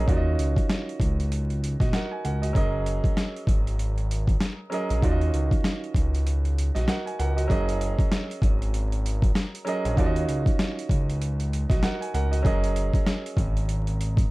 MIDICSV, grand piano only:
0, 0, Header, 1, 2, 480
1, 0, Start_track
1, 0, Tempo, 618557
1, 59, Time_signature, 4, 2, 24, 8
1, 11103, End_track
2, 0, Start_track
2, 0, Title_t, "Grand piano"
2, 0, Program_c, 0, 0
2, 0, Control_c, 0, 64, 127
2, 47, Note_on_c, 0, 51, 78
2, 55, Note_on_c, 0, 61, 79
2, 62, Note_on_c, 0, 65, 80
2, 69, Control_c, 0, 64, 0
2, 70, Note_on_c, 0, 66, 84
2, 78, Note_on_c, 0, 74, 75
2, 128, Note_off_c, 0, 74, 0
2, 128, Note_on_c, 0, 75, 90
2, 199, Control_c, 0, 64, 127
2, 703, Note_off_c, 0, 51, 0
2, 707, Note_off_c, 0, 61, 0
2, 711, Note_off_c, 0, 65, 0
2, 715, Note_off_c, 0, 66, 0
2, 743, Note_off_c, 0, 75, 0
2, 1396, Note_on_c, 0, 75, 66
2, 1401, Note_on_c, 0, 66, 58
2, 1492, Note_off_c, 0, 75, 0
2, 1495, Note_off_c, 0, 66, 0
2, 1505, Note_on_c, 0, 78, 72
2, 1510, Note_on_c, 0, 70, 60
2, 1637, Note_off_c, 0, 78, 0
2, 1639, Note_off_c, 0, 70, 0
2, 1639, Note_on_c, 0, 80, 72
2, 1734, Note_off_c, 0, 80, 0
2, 1744, Note_on_c, 0, 78, 69
2, 1749, Note_on_c, 0, 70, 59
2, 1876, Note_off_c, 0, 78, 0
2, 1877, Note_on_c, 0, 75, 66
2, 1878, Note_off_c, 0, 70, 0
2, 1882, Note_on_c, 0, 66, 55
2, 1963, Note_on_c, 0, 54, 84
2, 1971, Note_on_c, 0, 61, 77
2, 1979, Note_on_c, 0, 68, 78
2, 1983, Note_off_c, 0, 75, 0
2, 1986, Note_on_c, 0, 70, 75
2, 1989, Control_c, 0, 64, 0
2, 1994, Note_on_c, 0, 75, 107
2, 2109, Note_off_c, 0, 66, 0
2, 2113, Control_c, 0, 64, 127
2, 2621, Note_off_c, 0, 54, 0
2, 2625, Note_off_c, 0, 61, 0
2, 2629, Note_off_c, 0, 68, 0
2, 2633, Note_off_c, 0, 70, 0
2, 2636, Note_off_c, 0, 75, 0
2, 3645, Note_on_c, 0, 54, 83
2, 3653, Note_on_c, 0, 61, 77
2, 3661, Note_on_c, 0, 68, 81
2, 3668, Note_on_c, 0, 70, 86
2, 3676, Note_on_c, 0, 75, 98
2, 3825, Note_off_c, 0, 54, 0
2, 3829, Note_off_c, 0, 61, 0
2, 3833, Note_off_c, 0, 68, 0
2, 3837, Note_off_c, 0, 70, 0
2, 3841, Note_off_c, 0, 75, 0
2, 3887, Note_on_c, 0, 51, 80
2, 3895, Note_on_c, 0, 61, 78
2, 3903, Note_on_c, 0, 65, 79
2, 3909, Control_c, 0, 64, 0
2, 3910, Note_on_c, 0, 66, 83
2, 3918, Note_on_c, 0, 74, 75
2, 3968, Note_off_c, 0, 74, 0
2, 3968, Note_on_c, 0, 75, 88
2, 4061, Control_c, 0, 64, 127
2, 4543, Note_off_c, 0, 51, 0
2, 4547, Note_off_c, 0, 61, 0
2, 4551, Note_off_c, 0, 65, 0
2, 4554, Note_off_c, 0, 66, 0
2, 4583, Note_off_c, 0, 75, 0
2, 5235, Note_on_c, 0, 75, 67
2, 5240, Note_on_c, 0, 66, 59
2, 5331, Note_off_c, 0, 75, 0
2, 5334, Note_off_c, 0, 66, 0
2, 5344, Note_on_c, 0, 78, 74
2, 5349, Note_on_c, 0, 70, 60
2, 5476, Note_off_c, 0, 78, 0
2, 5478, Note_off_c, 0, 70, 0
2, 5478, Note_on_c, 0, 80, 71
2, 5573, Note_off_c, 0, 80, 0
2, 5581, Note_on_c, 0, 78, 72
2, 5586, Note_on_c, 0, 70, 57
2, 5714, Note_off_c, 0, 78, 0
2, 5715, Note_on_c, 0, 75, 64
2, 5717, Note_off_c, 0, 70, 0
2, 5720, Note_on_c, 0, 66, 57
2, 5802, Note_on_c, 0, 54, 91
2, 5810, Note_on_c, 0, 61, 78
2, 5818, Note_on_c, 0, 68, 79
2, 5821, Note_off_c, 0, 75, 0
2, 5825, Note_on_c, 0, 70, 79
2, 5829, Control_c, 0, 64, 0
2, 5833, Note_on_c, 0, 75, 106
2, 5948, Note_off_c, 0, 66, 0
2, 5957, Control_c, 0, 64, 127
2, 6460, Note_off_c, 0, 54, 0
2, 6464, Note_off_c, 0, 61, 0
2, 6468, Note_off_c, 0, 68, 0
2, 6472, Note_off_c, 0, 70, 0
2, 6476, Note_off_c, 0, 75, 0
2, 7486, Note_on_c, 0, 54, 89
2, 7493, Note_on_c, 0, 61, 81
2, 7501, Note_on_c, 0, 68, 80
2, 7508, Note_on_c, 0, 70, 84
2, 7516, Note_on_c, 0, 75, 104
2, 7665, Note_off_c, 0, 54, 0
2, 7669, Note_off_c, 0, 61, 0
2, 7673, Note_off_c, 0, 68, 0
2, 7677, Note_off_c, 0, 70, 0
2, 7681, Note_off_c, 0, 75, 0
2, 7727, Note_on_c, 0, 51, 80
2, 7735, Note_on_c, 0, 61, 81
2, 7742, Note_on_c, 0, 65, 83
2, 7750, Control_c, 0, 64, 0
2, 7750, Note_on_c, 0, 66, 85
2, 7757, Note_on_c, 0, 74, 79
2, 7807, Note_off_c, 0, 74, 0
2, 7808, Note_on_c, 0, 75, 96
2, 7874, Control_c, 0, 64, 127
2, 8383, Note_off_c, 0, 51, 0
2, 8387, Note_off_c, 0, 61, 0
2, 8390, Note_off_c, 0, 65, 0
2, 8394, Note_off_c, 0, 66, 0
2, 8423, Note_off_c, 0, 75, 0
2, 9075, Note_on_c, 0, 75, 69
2, 9080, Note_on_c, 0, 66, 61
2, 9171, Note_off_c, 0, 75, 0
2, 9174, Note_off_c, 0, 66, 0
2, 9184, Note_on_c, 0, 78, 76
2, 9189, Note_on_c, 0, 70, 63
2, 9316, Note_off_c, 0, 78, 0
2, 9318, Note_off_c, 0, 70, 0
2, 9319, Note_on_c, 0, 80, 72
2, 9413, Note_off_c, 0, 80, 0
2, 9423, Note_on_c, 0, 78, 73
2, 9428, Note_on_c, 0, 70, 64
2, 9555, Note_off_c, 0, 78, 0
2, 9556, Note_on_c, 0, 75, 68
2, 9558, Note_off_c, 0, 70, 0
2, 9561, Note_on_c, 0, 66, 58
2, 9642, Note_on_c, 0, 54, 88
2, 9649, Note_on_c, 0, 61, 84
2, 9657, Note_on_c, 0, 68, 84
2, 9661, Note_off_c, 0, 75, 0
2, 9665, Note_on_c, 0, 70, 80
2, 9668, Control_c, 0, 64, 0
2, 9672, Note_on_c, 0, 75, 108
2, 9788, Note_off_c, 0, 66, 0
2, 9808, Control_c, 0, 64, 127
2, 10300, Note_off_c, 0, 54, 0
2, 10304, Note_off_c, 0, 61, 0
2, 10308, Note_off_c, 0, 68, 0
2, 10312, Note_off_c, 0, 70, 0
2, 10316, Note_off_c, 0, 75, 0
2, 11103, End_track
0, 0, End_of_file